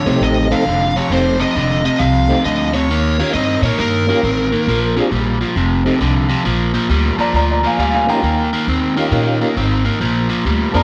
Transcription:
Already playing: lead electric guitar C#5
0.06 upright bass C2, overdriven electric guitar F2 C3, tonewheel organ A3 C4 D#4 G4
0.21 upright bass A1, overdriven electric guitar F2 C3, lead electric guitar D#5
0.50 overdriven electric guitar F2 C3, tonewheel organ A3 C4 D#4 A4, lead electric guitar F5
0.66 upright bass F1, overdriven electric guitar F2 D3
0.96 overdriven electric guitar F2 C3, lead electric guitar C#5
1.10 upright bass F1, overdriven electric guitar F2 C3, tonewheel organ A3 C4 D#4 G4, lead electric guitar C5
1.40 overdriven electric guitar F2 C3, lead electric guitar D#5
1.55 upright bass F1, overdriven electric guitar F2 D3
1.84 overdriven electric guitar F2 C3, lead electric guitar D#5
1.99 upright bass C2, overdriven electric guitar F2 C3, lead electric guitar F5
2.28 overdriven electric guitar F2 C3, tonewheel organ A3 C4 D#4 G4
2.45 upright bass D2, overdriven electric guitar F2 D3, lead electric guitar D#5
2.74 overdriven electric guitar F2 C3, lead electric guitar C#5
2.89 upright bass D#2, overdriven electric guitar D#3 A#3
3.18 overdriven electric guitar D#3 A#3, tonewheel organ A#3 C#4 F4 G4
3.33 upright bass G2, overdriven electric guitar D#3 C4, lead electric guitar D#5
3.62 upright bass A#2, overdriven electric guitar D#3 A#3, lead electric guitar C#5
3.78 upright bass G2, overdriven electric guitar D#3 A#3, lead electric guitar A#4
4.07 overdriven electric guitar D#3 A#3, tonewheel organ A#3 C#4 F4 G4
4.23 upright bass A1, overdriven electric guitar D#3 C4
4.52 overdriven electric guitar D#3 A#3
4.67 upright bass A#1, overdriven electric guitar A#2 F3
4.96 overdriven electric guitar A#2 F3, tonewheel organ C4 D4 F4 G#4
5.11 upright bass A#1, overdriven electric guitar A#2 G3
5.41 overdriven electric guitar A#2 F3
5.56 upright bass F1, overdriven electric guitar F2 C3
5.84 overdriven electric guitar F2 C3, tonewheel organ C4 D#4 G4 A4
6.00 upright bass C2, overdriven electric guitar F2 D3
6.29 overdriven electric guitar F2 C3
6.45 upright bass A#1, overdriven electric guitar A#2 F3
6.74 overdriven electric guitar A#2 F3
6.89 upright bass D2, overdriven electric guitar A#2 G3
7.16 upright bass F2, overdriven electric guitar A#2 F3, upright piano A5
7.20 upright piano D5 A#5
7.33 upright bass D2, overdriven electric guitar A#2 F3, upright piano D5 A#5
7.51 upright piano D5 A#5
7.63 overdriven electric guitar A#2 F3, upright piano F5 G#5
7.78 upright bass D2, overdriven electric guitar A#2 G3, upright piano F5 G#5
7.94 upright piano F5 G#5
8.07 overdriven electric guitar A#2 F3, tonewheel organ A#3 C#4 D#4 F4 G4, upright piano G5 A#5
8.23 upright bass D#2, overdriven electric guitar D#3 A#3
8.53 overdriven electric guitar D#3 A#3
8.67 upright bass D#2, overdriven electric guitar D#3 C4
8.95 overdriven electric guitar D#3 A#3, tonewheel organ A#3 C#4 D#4 F4 G4
9.12 upright bass A#2, overdriven electric guitar D#3 A#3
9.41 overdriven electric guitar D#3 A#3
9.57 upright bass G#1, overdriven electric guitar D#3 C4
9.84 overdriven electric guitar D#3 A#3
10.00 upright bass A#1, overdriven electric guitar A#2 F3
10.29 overdriven electric guitar A#2 F3
10.45 upright bass D2, overdriven electric guitar A#2 G3
10.72 upright bass F2, overdriven electric guitar A#2 F3, tonewheel organ A#3 C4 D4 F4 G#4, upright piano D5 A5
10.76 upright piano A#5

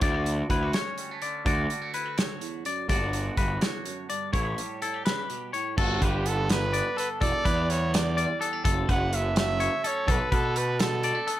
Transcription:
0.01 picked electric bass D2, clean electric guitar D2 E4 D5, kick, closed hi-hat
0.14 clean electric guitar F#4
0.26 clean electric guitar A3, closed hi-hat
0.49 picked electric bass D2, clean electric guitar E4 B4, kick, closed hi-hat
0.63 clean electric guitar F#4
0.73 clean electric guitar C#4 C#5, snare, closed hi-hat
0.98 clean electric guitar G3, closed hi-hat
1.11 clean electric guitar A3
1.22 clean electric guitar D3 D5, closed hi-hat
1.46 picked electric bass D2, clean electric guitar D2 F#4 D5, kick, closed hi-hat
1.70 clean electric guitar G3, closed hi-hat
1.82 clean electric guitar A3
1.94 clean electric guitar E4 B4, closed hi-hat
2.06 clean electric guitar F#4
2.18 clean electric guitar D2 C#5, snare, closed hi-hat
2.41 clean electric guitar E2, closed hi-hat
2.65 clean electric guitar F#2 D5, closed hi-hat
2.89 picked electric bass G1, clean electric guitar G2 D3 B3 D4 F#4 D5, kick, closed hi-hat
3.13 clean electric guitar B3, closed hi-hat
3.37 picked electric bass G1, clean electric guitar F#4 B4, kick, closed hi-hat
3.61 clean electric guitar E2 C#5, snare, closed hi-hat
3.85 clean electric guitar F#2, closed hi-hat
4.10 clean electric guitar G2 D5, closed hi-hat
4.33 picked electric bass A1, clean electric guitar A2 E4 C#5, kick, closed hi-hat
4.45 clean electric guitar G4
4.58 clean electric guitar G3, closed hi-hat
4.82 clean electric guitar E4 A4, closed hi-hat
4.94 clean electric guitar G4
5.05 clean electric guitar C#3 B4, snare, closed hi-hat
5.29 clean electric guitar B2, closed hi-hat
5.53 clean electric guitar A2 C#5, closed hi-hat
5.77 picked electric bass G1, clean electric guitar G2 A4, trumpet F#4, kick, crash
6.02 picked electric bass G1, clean electric guitar D3 B4, trumpet G4, kick, closed hi-hat
6.26 clean electric guitar B3, trumpet A4, closed hi-hat
6.49 clean electric guitar D3, trumpet B4, snare, closed hi-hat
6.73 clean electric guitar B3 D5, closed hi-hat
6.97 clean electric guitar D4 A4, trumpet B4, closed hi-hat
7.20 picked electric bass E1, clean electric guitar E2 A4, trumpet D5, kick, closed hi-hat
7.44 picked electric bass E2, clean electric guitar E3 B4, kick, closed hi-hat
7.69 clean electric guitar G3, trumpet C#5, closed hi-hat
7.92 clean electric guitar E3, trumpet D5, snare, closed hi-hat
8.16 clean electric guitar G3 D5, closed hi-hat
8.39 clean electric guitar B3 A4, closed hi-hat
8.53 clean electric guitar D4
8.64 picked electric bass F#1, clean electric guitar F#2 A4, kick, closed hi-hat
8.88 picked electric bass F#1, clean electric guitar F#3 B4, trumpet F#5, kick, closed hi-hat
9.12 clean electric guitar A3, trumpet E5, closed hi-hat
9.36 clean electric guitar F#3, trumpet E5, snare, closed hi-hat
9.60 clean electric guitar A3 C#5, closed hi-hat
9.84 clean electric guitar C#4 A4, trumpet C#5, closed hi-hat
10.06 picked electric bass B1, clean electric guitar B2 A4, kick, closed hi-hat
10.10 trumpet B4
10.31 picked electric bass B2, clean electric guitar D3 B4, trumpet A4, kick, closed hi-hat
10.55 clean electric guitar A3, trumpet B4, closed hi-hat
10.79 clean electric guitar D3, trumpet A4, snare, closed hi-hat
11.03 clean electric guitar G3 D5, closed hi-hat
11.15 clean electric guitar A3
11.27 clean electric guitar B3 A4, closed hi-hat

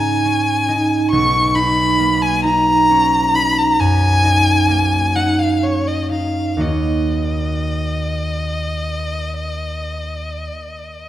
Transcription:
Already playing: harp G#2 C#4 D#4, violin G#5
0.25 harp C#4
0.68 harp D#4
1.11 harp B1, violin C#6
1.55 harp D#4, violin B5
1.99 harp A#3
2.22 violin G#5
2.44 harp D#4, violin A#5
2.90 harp C#4
3.34 harp D#4, violin B5
3.58 violin A#5
3.79 harp F#2, violin G#5
4.23 harp D#4
4.68 harp A#3
5.15 harp D#4, violin F#5
5.39 violin F5
5.63 harp C#4, violin C#5
5.87 violin D#5
6.11 harp D#4, violin F5
6.57 harp D#2 A#3 D#4 F#4 C#5
6.61 violin D#5

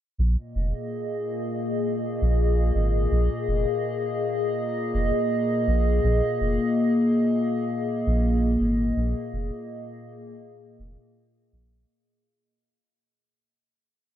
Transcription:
0.18 sub bass A#1, ambient pad A#2
0.37 ambient pad A#3 D#5
0.55 sub bass F1, ambient pad G#4
2.21 sub bass A#1
2.75 sub bass G#1
3.11 sub bass A#1
3.48 sub bass F1
4.94 sub bass F1
5.67 sub bass A#1
6.04 sub bass A#1
6.40 sub bass F1
8.07 sub bass A#1
8.60 sub bass G#1
8.96 sub bass A#1
9.33 sub bass F1
10.79 sub bass F1
11.52 sub bass A#1

